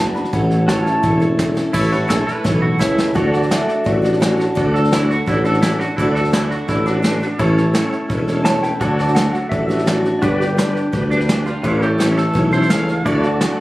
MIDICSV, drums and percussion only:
0, 0, Header, 1, 2, 480
1, 0, Start_track
1, 0, Key_signature, 2, "major"
1, 0, Tempo, 353565
1, 445, Time_signature, 4, 2, 24, 8
1, 18466, End_track
2, 0, Start_track
2, 0, Title_t, "Drums"
2, 215, Note_on_c, 9, 38, 35
2, 332, Note_off_c, 9, 38, 0
2, 332, Note_on_c, 9, 38, 34
2, 450, Note_off_c, 9, 38, 0
2, 450, Note_on_c, 9, 38, 35
2, 451, Note_on_c, 9, 36, 110
2, 585, Note_off_c, 9, 38, 0
2, 587, Note_off_c, 9, 36, 0
2, 685, Note_on_c, 9, 38, 34
2, 821, Note_off_c, 9, 38, 0
2, 930, Note_on_c, 9, 36, 90
2, 933, Note_on_c, 9, 38, 110
2, 933, Note_on_c, 9, 44, 82
2, 1066, Note_off_c, 9, 36, 0
2, 1069, Note_off_c, 9, 38, 0
2, 1069, Note_off_c, 9, 44, 0
2, 1176, Note_on_c, 9, 38, 34
2, 1311, Note_off_c, 9, 38, 0
2, 1405, Note_on_c, 9, 38, 33
2, 1407, Note_on_c, 9, 36, 111
2, 1541, Note_off_c, 9, 38, 0
2, 1543, Note_off_c, 9, 36, 0
2, 1645, Note_on_c, 9, 38, 34
2, 1780, Note_off_c, 9, 38, 0
2, 1884, Note_on_c, 9, 38, 109
2, 1884, Note_on_c, 9, 44, 78
2, 1885, Note_on_c, 9, 36, 81
2, 2019, Note_off_c, 9, 38, 0
2, 2019, Note_off_c, 9, 44, 0
2, 2021, Note_off_c, 9, 36, 0
2, 2124, Note_on_c, 9, 38, 61
2, 2260, Note_off_c, 9, 38, 0
2, 2359, Note_on_c, 9, 38, 33
2, 2359, Note_on_c, 9, 49, 99
2, 2364, Note_on_c, 9, 36, 111
2, 2488, Note_off_c, 9, 38, 0
2, 2488, Note_on_c, 9, 38, 33
2, 2494, Note_off_c, 9, 49, 0
2, 2500, Note_off_c, 9, 36, 0
2, 2612, Note_off_c, 9, 38, 0
2, 2612, Note_on_c, 9, 38, 36
2, 2748, Note_off_c, 9, 38, 0
2, 2848, Note_on_c, 9, 36, 85
2, 2850, Note_on_c, 9, 38, 109
2, 2850, Note_on_c, 9, 44, 87
2, 2984, Note_off_c, 9, 36, 0
2, 2986, Note_off_c, 9, 38, 0
2, 2986, Note_off_c, 9, 44, 0
2, 3094, Note_on_c, 9, 38, 33
2, 3230, Note_off_c, 9, 38, 0
2, 3322, Note_on_c, 9, 38, 59
2, 3326, Note_on_c, 9, 36, 113
2, 3458, Note_off_c, 9, 38, 0
2, 3462, Note_off_c, 9, 36, 0
2, 3806, Note_on_c, 9, 36, 88
2, 3808, Note_on_c, 9, 38, 89
2, 3808, Note_on_c, 9, 44, 87
2, 3942, Note_off_c, 9, 36, 0
2, 3944, Note_off_c, 9, 38, 0
2, 3944, Note_off_c, 9, 44, 0
2, 4049, Note_on_c, 9, 38, 83
2, 4185, Note_off_c, 9, 38, 0
2, 4284, Note_on_c, 9, 38, 34
2, 4287, Note_on_c, 9, 36, 107
2, 4420, Note_off_c, 9, 38, 0
2, 4423, Note_off_c, 9, 36, 0
2, 4527, Note_on_c, 9, 38, 36
2, 4650, Note_off_c, 9, 38, 0
2, 4650, Note_on_c, 9, 38, 35
2, 4767, Note_off_c, 9, 38, 0
2, 4767, Note_on_c, 9, 38, 112
2, 4767, Note_on_c, 9, 44, 85
2, 4903, Note_off_c, 9, 38, 0
2, 4903, Note_off_c, 9, 44, 0
2, 5007, Note_on_c, 9, 38, 35
2, 5142, Note_off_c, 9, 38, 0
2, 5241, Note_on_c, 9, 38, 37
2, 5245, Note_on_c, 9, 36, 111
2, 5376, Note_off_c, 9, 38, 0
2, 5381, Note_off_c, 9, 36, 0
2, 5489, Note_on_c, 9, 38, 36
2, 5609, Note_off_c, 9, 38, 0
2, 5609, Note_on_c, 9, 38, 32
2, 5728, Note_off_c, 9, 38, 0
2, 5728, Note_on_c, 9, 38, 104
2, 5728, Note_on_c, 9, 44, 81
2, 5863, Note_off_c, 9, 38, 0
2, 5863, Note_off_c, 9, 44, 0
2, 5973, Note_on_c, 9, 38, 35
2, 6109, Note_off_c, 9, 38, 0
2, 6207, Note_on_c, 9, 36, 112
2, 6211, Note_on_c, 9, 38, 35
2, 6342, Note_off_c, 9, 36, 0
2, 6346, Note_off_c, 9, 38, 0
2, 6453, Note_on_c, 9, 38, 36
2, 6575, Note_off_c, 9, 38, 0
2, 6575, Note_on_c, 9, 38, 35
2, 6687, Note_off_c, 9, 38, 0
2, 6687, Note_on_c, 9, 38, 117
2, 6687, Note_on_c, 9, 44, 85
2, 6823, Note_off_c, 9, 38, 0
2, 6823, Note_off_c, 9, 44, 0
2, 6929, Note_on_c, 9, 38, 35
2, 7065, Note_off_c, 9, 38, 0
2, 7158, Note_on_c, 9, 38, 35
2, 7162, Note_on_c, 9, 36, 110
2, 7294, Note_off_c, 9, 38, 0
2, 7297, Note_off_c, 9, 36, 0
2, 7399, Note_on_c, 9, 38, 36
2, 7520, Note_off_c, 9, 38, 0
2, 7520, Note_on_c, 9, 38, 35
2, 7637, Note_off_c, 9, 38, 0
2, 7637, Note_on_c, 9, 38, 107
2, 7637, Note_on_c, 9, 44, 83
2, 7772, Note_off_c, 9, 38, 0
2, 7772, Note_off_c, 9, 44, 0
2, 7878, Note_on_c, 9, 38, 35
2, 8014, Note_off_c, 9, 38, 0
2, 8118, Note_on_c, 9, 38, 34
2, 8120, Note_on_c, 9, 36, 111
2, 8254, Note_off_c, 9, 38, 0
2, 8256, Note_off_c, 9, 36, 0
2, 8358, Note_on_c, 9, 38, 39
2, 8475, Note_off_c, 9, 38, 0
2, 8475, Note_on_c, 9, 38, 35
2, 8595, Note_off_c, 9, 38, 0
2, 8595, Note_on_c, 9, 38, 115
2, 8595, Note_on_c, 9, 44, 87
2, 8731, Note_off_c, 9, 38, 0
2, 8731, Note_off_c, 9, 44, 0
2, 8839, Note_on_c, 9, 38, 37
2, 8975, Note_off_c, 9, 38, 0
2, 9077, Note_on_c, 9, 38, 35
2, 9079, Note_on_c, 9, 36, 110
2, 9213, Note_off_c, 9, 38, 0
2, 9215, Note_off_c, 9, 36, 0
2, 9322, Note_on_c, 9, 38, 36
2, 9457, Note_off_c, 9, 38, 0
2, 9559, Note_on_c, 9, 38, 115
2, 9559, Note_on_c, 9, 44, 85
2, 9695, Note_off_c, 9, 38, 0
2, 9695, Note_off_c, 9, 44, 0
2, 9803, Note_on_c, 9, 38, 34
2, 9939, Note_off_c, 9, 38, 0
2, 10039, Note_on_c, 9, 36, 111
2, 10040, Note_on_c, 9, 38, 35
2, 10175, Note_off_c, 9, 36, 0
2, 10176, Note_off_c, 9, 38, 0
2, 10283, Note_on_c, 9, 38, 37
2, 10419, Note_off_c, 9, 38, 0
2, 10515, Note_on_c, 9, 38, 121
2, 10515, Note_on_c, 9, 44, 88
2, 10651, Note_off_c, 9, 38, 0
2, 10651, Note_off_c, 9, 44, 0
2, 10756, Note_on_c, 9, 38, 35
2, 10891, Note_off_c, 9, 38, 0
2, 10994, Note_on_c, 9, 38, 36
2, 10995, Note_on_c, 9, 36, 109
2, 11130, Note_off_c, 9, 38, 0
2, 11131, Note_off_c, 9, 36, 0
2, 11234, Note_on_c, 9, 38, 35
2, 11369, Note_off_c, 9, 38, 0
2, 11474, Note_on_c, 9, 38, 115
2, 11474, Note_on_c, 9, 44, 84
2, 11610, Note_off_c, 9, 38, 0
2, 11610, Note_off_c, 9, 44, 0
2, 11718, Note_on_c, 9, 38, 35
2, 11854, Note_off_c, 9, 38, 0
2, 11956, Note_on_c, 9, 38, 36
2, 11958, Note_on_c, 9, 36, 112
2, 12092, Note_off_c, 9, 38, 0
2, 12094, Note_off_c, 9, 36, 0
2, 12200, Note_on_c, 9, 38, 38
2, 12325, Note_off_c, 9, 38, 0
2, 12325, Note_on_c, 9, 38, 34
2, 12438, Note_off_c, 9, 38, 0
2, 12438, Note_on_c, 9, 38, 114
2, 12438, Note_on_c, 9, 44, 88
2, 12574, Note_off_c, 9, 38, 0
2, 12574, Note_off_c, 9, 44, 0
2, 12679, Note_on_c, 9, 38, 35
2, 12815, Note_off_c, 9, 38, 0
2, 12918, Note_on_c, 9, 38, 36
2, 12919, Note_on_c, 9, 36, 113
2, 13054, Note_off_c, 9, 38, 0
2, 13055, Note_off_c, 9, 36, 0
2, 13163, Note_on_c, 9, 38, 35
2, 13283, Note_off_c, 9, 38, 0
2, 13283, Note_on_c, 9, 38, 35
2, 13401, Note_off_c, 9, 38, 0
2, 13401, Note_on_c, 9, 38, 107
2, 13401, Note_on_c, 9, 44, 85
2, 13537, Note_off_c, 9, 38, 0
2, 13537, Note_off_c, 9, 44, 0
2, 13644, Note_on_c, 9, 38, 34
2, 13780, Note_off_c, 9, 38, 0
2, 13883, Note_on_c, 9, 36, 113
2, 13885, Note_on_c, 9, 38, 35
2, 14019, Note_off_c, 9, 36, 0
2, 14020, Note_off_c, 9, 38, 0
2, 14134, Note_on_c, 9, 38, 38
2, 14270, Note_off_c, 9, 38, 0
2, 14368, Note_on_c, 9, 38, 110
2, 14368, Note_on_c, 9, 44, 90
2, 14504, Note_off_c, 9, 38, 0
2, 14504, Note_off_c, 9, 44, 0
2, 14607, Note_on_c, 9, 38, 36
2, 14743, Note_off_c, 9, 38, 0
2, 14840, Note_on_c, 9, 38, 34
2, 14842, Note_on_c, 9, 36, 109
2, 14976, Note_off_c, 9, 38, 0
2, 14978, Note_off_c, 9, 36, 0
2, 15088, Note_on_c, 9, 38, 35
2, 15208, Note_off_c, 9, 38, 0
2, 15208, Note_on_c, 9, 38, 33
2, 15327, Note_off_c, 9, 38, 0
2, 15327, Note_on_c, 9, 38, 116
2, 15327, Note_on_c, 9, 44, 91
2, 15463, Note_off_c, 9, 38, 0
2, 15463, Note_off_c, 9, 44, 0
2, 15564, Note_on_c, 9, 38, 36
2, 15700, Note_off_c, 9, 38, 0
2, 15802, Note_on_c, 9, 38, 37
2, 15804, Note_on_c, 9, 36, 114
2, 15938, Note_off_c, 9, 38, 0
2, 15940, Note_off_c, 9, 36, 0
2, 16045, Note_on_c, 9, 38, 38
2, 16181, Note_off_c, 9, 38, 0
2, 16290, Note_on_c, 9, 38, 120
2, 16290, Note_on_c, 9, 44, 89
2, 16426, Note_off_c, 9, 38, 0
2, 16426, Note_off_c, 9, 44, 0
2, 16526, Note_on_c, 9, 38, 38
2, 16662, Note_off_c, 9, 38, 0
2, 16767, Note_on_c, 9, 38, 37
2, 16769, Note_on_c, 9, 36, 108
2, 16902, Note_off_c, 9, 38, 0
2, 16905, Note_off_c, 9, 36, 0
2, 17006, Note_on_c, 9, 38, 36
2, 17135, Note_off_c, 9, 38, 0
2, 17135, Note_on_c, 9, 38, 33
2, 17242, Note_off_c, 9, 38, 0
2, 17242, Note_on_c, 9, 38, 116
2, 17242, Note_on_c, 9, 44, 93
2, 17377, Note_off_c, 9, 38, 0
2, 17377, Note_off_c, 9, 44, 0
2, 17489, Note_on_c, 9, 38, 35
2, 17625, Note_off_c, 9, 38, 0
2, 17724, Note_on_c, 9, 38, 35
2, 17728, Note_on_c, 9, 36, 112
2, 17860, Note_off_c, 9, 38, 0
2, 17864, Note_off_c, 9, 36, 0
2, 17965, Note_on_c, 9, 38, 36
2, 18100, Note_off_c, 9, 38, 0
2, 18202, Note_on_c, 9, 38, 116
2, 18202, Note_on_c, 9, 44, 89
2, 18337, Note_off_c, 9, 38, 0
2, 18337, Note_off_c, 9, 44, 0
2, 18466, End_track
0, 0, End_of_file